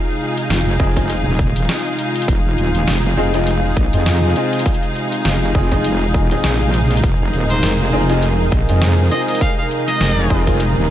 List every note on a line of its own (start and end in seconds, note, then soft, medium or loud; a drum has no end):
0.00 10.90 C3 medium
0.00 10.90 G#3 medium
0.00 10.90 D#4 medium
0.00 7.03 F4 medium
0.00 10.90 G#4 medium
0.00 10.90 F5 medium
0.38 closed hi-hat medium
0.50 0.78 F1 loud
0.50 snare loud
0.50 closed hi-hat medium
0.80 1.24 F1 medium
0.80 0.93 C4 medium
0.80 0.93 D#4 medium
0.80 0.93 F4 medium
0.80 0.93 G#4 loud
0.80 kick loud
0.97 1.08 C4 medium
0.97 1.08 D#4 medium
0.97 1.08 F4 medium
0.97 1.08 G#4 medium
0.97 kick medium
0.97 closed hi-hat medium
1.10 closed hi-hat medium
1.26 1.67 D#1 medium
1.39 kick loud
1.39 closed hi-hat soft
1.56 closed hi-hat medium
1.69 snare loud
1.69 closed hi-hat medium
1.99 closed hi-hat medium
2.16 closed hi-hat soft
2.22 closed hi-hat medium
2.28 2.56 F1 medium
2.28 kick loud
2.28 closed hi-hat medium
2.58 2.86 D#1 medium
2.58 closed hi-hat soft
2.75 closed hi-hat medium
2.88 3.15 F1 medium
2.88 snare loud
2.88 closed hi-hat medium
3.17 3.75 F1 loud
3.17 3.32 C4 medium
3.17 3.32 D#4 medium
3.17 3.32 F4 medium
3.17 3.32 G#4 loud
3.34 3.45 C4 medium
3.34 3.45 D#4 medium
3.34 3.45 F4 medium
3.34 3.45 G#4 loud
3.34 closed hi-hat medium
3.47 closed hi-hat medium
3.76 3.91 A#1 medium
3.76 kick loud
3.76 closed hi-hat soft
3.93 4.34 F2 loud
3.93 4.33 C4 medium
3.93 4.33 D#4 medium
3.93 4.33 F4 medium
3.93 4.33 G#4 medium
3.93 closed hi-hat medium
4.06 snare loud
4.06 closed hi-hat medium
4.36 4.58 C4 medium
4.36 4.58 D#4 medium
4.36 4.58 F4 medium
4.36 4.58 G#4 medium
4.36 closed hi-hat medium
4.53 closed hi-hat soft
4.59 closed hi-hat medium
4.66 kick loud
4.66 closed hi-hat medium
4.74 closed hi-hat soft
4.83 closed hi-hat soft
4.95 closed hi-hat soft
5.12 closed hi-hat medium
5.25 5.53 F1 loud
5.25 snare loud
5.25 closed hi-hat medium
5.55 6.17 F1 loud
5.55 5.68 C4 medium
5.55 5.68 D#4 medium
5.55 5.68 F4 medium
5.55 5.68 G#4 loud
5.55 kick loud
5.72 5.83 C4 medium
5.72 5.83 D#4 medium
5.72 5.83 F4 medium
5.72 5.83 G#4 medium
5.72 kick medium
5.72 closed hi-hat soft
5.84 closed hi-hat medium
6.14 6.42 E1 loud
6.14 6.29 C4 medium
6.14 6.29 D#4 medium
6.14 6.29 F4 medium
6.14 6.29 G#4 medium
6.14 kick loud
6.14 closed hi-hat soft
6.31 6.50 C4 medium
6.31 6.50 D#4 medium
6.31 6.50 F4 medium
6.31 6.50 G#4 medium
6.31 closed hi-hat soft
6.44 7.02 A#1 medium
6.44 snare loud
6.44 closed hi-hat medium
6.74 closed hi-hat medium
6.91 closed hi-hat soft
6.97 closed hi-hat medium
7.03 7.31 F1 medium
7.03 10.90 A#4 medium
7.03 kick loud
7.03 closed hi-hat medium
7.33 7.61 D#1 medium
7.33 closed hi-hat soft
7.50 7.71 C5 medium
7.50 closed hi-hat soft
7.63 7.91 F1 medium
7.63 snare loud
7.63 closed hi-hat medium
7.93 8.50 F1 medium
7.93 8.07 C4 medium
7.93 8.07 D#4 medium
7.93 8.07 F4 medium
7.93 8.07 G#4 loud
8.10 8.21 C4 medium
8.10 8.21 D#4 medium
8.10 8.21 F4 medium
8.10 8.21 G#4 loud
8.10 closed hi-hat soft
8.23 closed hi-hat medium
8.52 8.66 A#1 medium
8.52 kick loud
8.52 closed hi-hat soft
8.69 9.10 F2 medium
8.69 9.09 C4 medium
8.69 9.09 D#4 medium
8.69 9.08 F4 medium
8.69 9.09 G#4 medium
8.69 closed hi-hat soft
8.82 snare loud
8.82 closed hi-hat medium
9.11 9.33 C4 medium
9.11 9.33 D#4 medium
9.11 9.33 F4 medium
9.11 9.33 G#4 medium
9.11 9.22 D#5 medium
9.11 closed hi-hat soft
9.28 9.37 D#5 medium
9.28 closed hi-hat soft
9.35 closed hi-hat medium
9.41 9.52 F5 medium
9.41 kick loud
9.41 closed hi-hat medium
9.58 9.66 F5 medium
9.71 closed hi-hat soft
9.87 10.47 D#5 loud
9.87 snare soft
9.87 closed hi-hat soft
10.01 10.28 F1 loud
10.01 snare loud
10.01 closed hi-hat medium
10.30 10.74 F1 loud
10.30 10.43 C4 medium
10.30 10.43 D#4 medium
10.30 10.43 F4 medium
10.30 10.43 G#4 loud
10.30 kick loud
10.47 10.58 C4 medium
10.47 10.58 D#4 medium
10.47 10.58 F4 medium
10.47 10.58 G#4 medium
10.47 kick medium
10.47 closed hi-hat soft
10.60 closed hi-hat medium
10.77 10.90 D#1 medium